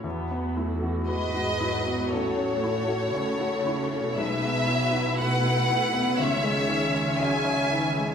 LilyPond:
<<
  \new Staff \with { instrumentName = "Violin section" } { \time 4/4 \key e \major \tempo 4 = 59 r4 dis''4 cis''2 | e''4 fis''4 e''4 gis''4 | }
  \new Staff \with { instrumentName = "Violin section" } { \time 4/4 \key e \major r4 b'4 a'2 | b'4 b'4 cis''4 e''4 | }
  \new Staff \with { instrumentName = "Grand piano" } { \time 4/4 \key e \major e,16 b16 e'16 fis'16 b'16 fis'16 e'16 b16 a,,16 cis'16 e'16 fis'16 cis''16 fis'16 e'16 cis'16 | b,,16 b16 e'16 fis'16 b'16 fis'16 e'16 b16 cis,16 gis16 dis16 cis''16 gis'16 cis''16 dis16 gis16 | }
  \new Staff \with { instrumentName = "Viola section" } { \clef bass \time 4/4 \key e \major << { fis'1 | e'2 dis8 cis'4. | } \\ { b8 a8 gis8 fis8 fis8 a8 a4 | gis8 fis8 a4 gis4 fis8 e8 | } >> }
  \new Staff \with { instrumentName = "Cello section" } { \clef bass \time 4/4 \key e \major e,4 gis,4 a,4 cis4 | b,2 cis2 | }
>>